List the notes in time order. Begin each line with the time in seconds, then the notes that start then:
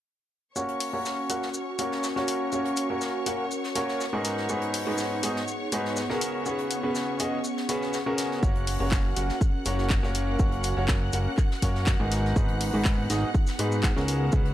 0.56 A#3 C#4 F#4 A#4 C#5 C#6, shaker
0.69 closed hi-hat
0.77 F#5, open hi-hat
0.81 F#4
0.93 A#3 C#4 F#4 A#4 C#5
1.05 snare, shaker
1.30 A#3 C#4 F#4 A#4 F#5, open hi-hat, shaker
1.42 snare
1.54 A#4, shaker
1.79 A#3 C#4 F#4 A#4 C#5, open hi-hat, shaker
1.92 snare
2.03 snare, shaker
2.16 A#3 C#4 F#4 A#4 C#5, snare
2.28 open hi-hat, shaker
2.52 A#3 C#4 F#4 A#4 C#5, shaker
2.65 closed hi-hat
2.76 open hi-hat, shaker
2.90 A#3 C#4 F#4 A#4 C#5
3.01 snare, shaker
3.26 A#3 C#4 F#4 A#4 F#5, open hi-hat, shaker
3.51 shaker
3.64 snare
3.75 A#3 C#4 F#4 A#4 C#5, snare, open hi-hat, shaker
3.88 snare
4.00 snare, shaker
4.13 G#2 B3 D#4 F#4 G#4 A#4
4.25 D#4, snare, open hi-hat, shaker
4.37 G#4, snare
4.49 G#2 B3 D#4 F#4 G#4 B4, shaker
4.60 B3, closed hi-hat
4.74 open hi-hat
4.87 G#2 B3 D#4 F#4 G#4 B4
4.98 snare, shaker
5.23 G#2 B3 D#4 F#4 G#4 D#5, open hi-hat, shaker
5.36 snare
5.48 shaker
5.72 G#2 B3 D#4 F#4 G#4 B4, open hi-hat, shaker
5.85 snare
5.96 snare, shaker
6.10 C#3 B3 C#4 F#4 G#4 A#4, snare
6.21 C#4, open hi-hat, shaker
6.46 C#3 B3 C#4 F#4 G#4 B4, shaker
6.59 closed hi-hat
6.71 open hi-hat, shaker
6.83 C#3 B3 C#4 F#4 G#4 B4
6.95 snare, shaker
7.19 C#3 B3 C#4 F#4 G#4 D#5, open hi-hat, shaker
7.44 shaker
7.57 snare
7.69 C#3 B3 C#4 F#4 G#4 B4, snare, open hi-hat, shaker
7.82 snare
7.93 snare, shaker
8.06 C#3 B3 C#4 F#4 G#4 A#4
8.18 snare, open hi-hat, shaker
8.31 snare
8.43 F#1 A#3 C#4 F#4 A#4 C#5 F#5 F#6, kick, shaker
8.49 F#4
8.56 closed hi-hat
8.67 open hi-hat
8.71 A#4
8.80 F#1 A#3 C#4 F#4 A#4 C#5
8.91 kick, snare, clap, shaker
9.16 F#1 A#3 C#4 F#4 A#4 F#5, open hi-hat, shaker
9.29 snare
9.41 kick, shaker
9.65 F#1 A#3 C#4 F#4 A#4 C#5, open hi-hat, shaker
9.78 snare
9.90 kick, snare, clap, shaker
10.03 F#1 A#3 C#4 F#4 A#4 C#5, snare
10.15 open hi-hat, shaker
10.39 F#1 A#3 C#4 F#4 A#4 C#5, kick, shaker
10.52 closed hi-hat
10.63 open hi-hat, shaker
10.77 F#1 A#3 C#4 F#4 A#4 C#5
10.88 kick, snare, clap, shaker
11.12 F#1 A#3 C#4 F#4 A#4 F#5, open hi-hat, shaker
11.37 kick, clap, shaker
11.51 snare
11.62 F#2 A#3 C#4 F#4 A#4 C#5, kick, snare, open hi-hat, shaker
11.75 snare
11.86 kick, snare, clap, shaker
12.00 G#1 G#2 B3 D#4 F#4 G#4 A#4
12.12 D#4, snare, open hi-hat, shaker
12.25 snare
12.34 G#1 G#2 B3 D#4 F#4 G#4 B4, kick, shaker
12.46 G#4, closed hi-hat
12.61 open hi-hat
12.74 G#1 G#2 B3 D#4 F#4 G#4 B4
12.85 kick, snare, clap, shaker
13.10 G#1 G#2 B3 D#4 F#4 G#4 D#5, snare, open hi-hat, shaker
13.35 kick, shaker
13.47 snare, shaker
13.59 G#2 B3 D#4 F#4 G#4 B4, open hi-hat
13.72 shaker
13.83 kick, snare, clap, shaker
13.96 C#2 C#3 B3 C#4 F#4 G#4 A#4, snare
14.08 C#4, open hi-hat, shaker
14.32 C#2 C#3 B3 C#4 F#4 G#4 B4, kick, shaker
14.46 closed hi-hat